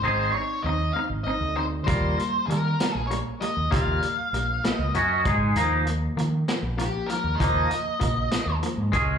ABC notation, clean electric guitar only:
X:1
M:6/8
L:1/8
Q:3/8=65
K:Ebmix
V:1 name="Clean electric guitar"
[CEA] [CE] [CE] [CE] [CE] [CE] | [G,B,F] [G,B,] [G,B,] [G,B,] [G,B,] [G,B,] | [G,B,F] [G,B,] [G,B,] [G,B,] [_G,D_G] [A,EA] | [F,B,E] [F,B,] [F,B,] [F,B,] [F,B,] [F,B,] |
[F,B,E] [F,B,] [F,B,] [F,B,] [F,B,] [A,DA] |]